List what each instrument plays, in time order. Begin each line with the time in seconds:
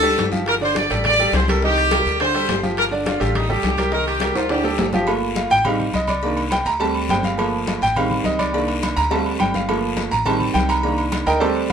Already playing: upright bass D2, horn section A4
0.02 grand piano G3 G4 A4, high conga, high timbale
0.18 upright bass G1, low bongo, high conga, high timbale, short guiro
0.31 grand piano F3 F4 G4, high conga, short guiro
0.36 low bongo
0.46 horn section A#4, high bongo, high conga, high timbale, long guiro
0.61 grand piano D3 D4 D5, horn section C5, high bongo, high conga
0.75 horn section D5, high bongo, high conga, high timbale, short guiro
0.90 upright bass A1, grand piano G3 G4 A4, high conga, high timbale, short guiro
1.04 horn section D5, high bongo, high conga, low conga, high timbale, long guiro
1.19 grand piano G3 G4 A4, high bongo, high conga
1.33 upright bass C2, horn section C5, high bongo, low bongo, high conga, high timbale, short guiro
1.48 grand piano G3 G4 A#4, horn section A4, high bongo, high conga, high timbale, short guiro
1.62 grand piano D#3 D#4 D#5, horn section G4, high bongo, high conga, long guiro
1.77 high bongo, high conga, high timbale
1.91 grand piano G3 G4 A#4, high bongo, high conga, high timbale, short guiro
2.06 upright bass D2, high conga, short guiro
2.20 grand piano D3 D4 D5, horn section C5, high bongo, high conga, high timbale, long guiro
2.34 grand piano G3 G4 A4, high bongo, high conga, high timbale
2.48 upright bass G1, high bongo, low bongo, high conga, high timbale, low timbale, short guiro
2.63 grand piano F3 F4 G4, high conga, short guiro
2.77 horn section A#4, high bongo, high conga, high timbale, long guiro
2.91 grand piano D3 D4 D5, high bongo, high conga
3.06 horn section F4, high bongo, high conga, high timbale, short guiro
3.20 upright bass A1, grand piano G3 G4 A4, high conga, high timbale, short guiro
3.35 horn section D#4, high bongo, high conga, low conga, high timbale, long guiro
3.49 grand piano G3 G4 A4, horn section G4, high bongo, high conga, low conga
3.63 upright bass C2, high bongo, low bongo, high conga, high timbale, short guiro
3.77 grand piano G3 G4 A#4, high bongo, high conga, high timbale, short guiro
3.92 grand piano D#3 D#4 D#5, horn section A#4, high bongo, high conga, long guiro
4.06 horn section G4, high bongo, high conga, high timbale
4.20 grand piano G3 G4 A#4, high bongo, high conga, high timbale, short guiro
4.35 upright bass D2, horn section F4, high conga, high timbale, short guiro
4.49 grand piano D3 D4 D5, horn section G4, high bongo, high conga, high timbale, long guiro
4.64 grand piano G3 G4 A4, high bongo, high conga, low timbale
4.78 upright bass G1, high bongo, low bongo, high conga, low timbale, short guiro
4.93 grand piano F3 F4 G4, high conga, low timbale, short guiro
5.07 grand piano A3 A#3 F4, cowbell, high conga, low agogo, long guiro
5.22 high conga
5.35 grand piano F5, cowbell, high conga, low agogo, short guiro
5.50 upright bass A1, grand piano G5, high conga, short guiro
5.65 grand piano G3 C4 D#4 F5, cowbell, high conga, low conga, low agogo, long guiro
5.79 high conga, low conga, low agogo
5.94 upright bass C2, grand piano D#5, cowbell, high conga, low agogo, short guiro
6.07 grand piano D5, cowbell, high conga, low agogo, short guiro
6.22 grand piano D#3 A#3 D4, cowbell, high conga, long guiro
6.37 cowbell, high conga, low agogo
6.51 grand piano G5, cowbell, high conga, low agogo, short guiro
6.65 upright bass D2, grand piano A#5, cowbell, high conga, short guiro
6.80 grand piano G3 A3 C4 A5, cowbell, high conga, low agogo, long guiro
6.95 high conga, low agogo
7.09 upright bass G1, grand piano G5, cowbell, high conga, low timbale, low agogo, short guiro
7.23 grand piano F5, cowbell, high conga, short guiro
7.37 grand piano F3 A3 A#3, cowbell, high conga, low agogo, long guiro
7.53 high conga
7.67 cowbell, high conga, low agogo, short guiro
7.81 upright bass A1, grand piano G5, high conga, short guiro
7.96 grand piano D#3 G3 C4 F5, cowbell, high conga, low conga, low agogo, long guiro
8.11 high conga, low conga, low agogo
8.24 upright bass C2, grand piano D#5, cowbell, high conga, low agogo, short guiro
8.39 grand piano D5, cowbell, high conga, low agogo, short guiro
8.53 grand piano D#3 A#3 D4, cowbell, high conga, long guiro
8.68 cowbell, high conga, low agogo
8.83 cowbell, high conga, low agogo, short guiro
8.97 upright bass D2, grand piano A#5, cowbell, high conga, short guiro
9.11 grand piano G3 A3 C4 A5, cowbell, high bongo, high conga, low agogo, long guiro
9.26 high conga, low agogo
9.40 upright bass G1, grand piano G5, cowbell, low bongo, high conga, low agogo, short guiro
9.54 grand piano F5, cowbell, low bongo, high conga, short guiro
9.68 grand piano F3 A3 A#3, cowbell, high conga, low agogo, long guiro
9.83 high conga
9.97 cowbell, high conga, low agogo, short guiro
10.11 upright bass A1, grand piano A#5, high conga, short guiro
10.25 grand piano D#3 G3 C4 A5, cowbell, high conga, low conga, low agogo, long guiro
10.40 high conga, low conga, low agogo
10.54 upright bass C2, grand piano G5, cowbell, high conga, low agogo, short guiro
10.69 grand piano A#5, cowbell, low agogo, short guiro
10.83 grand piano D#3 A#3 D4, cowbell, high conga, long guiro
10.98 cowbell, high conga, low agogo
11.12 cowbell, high conga, low agogo, short guiro
11.26 upright bass D2, grand piano A#4 D#5 G5 A#5, cowbell, high conga, short guiro
11.40 grand piano G3 A3 C4 A4 C5 D5 A5, cowbell, high conga, low agogo, long guiro
11.56 high conga, low agogo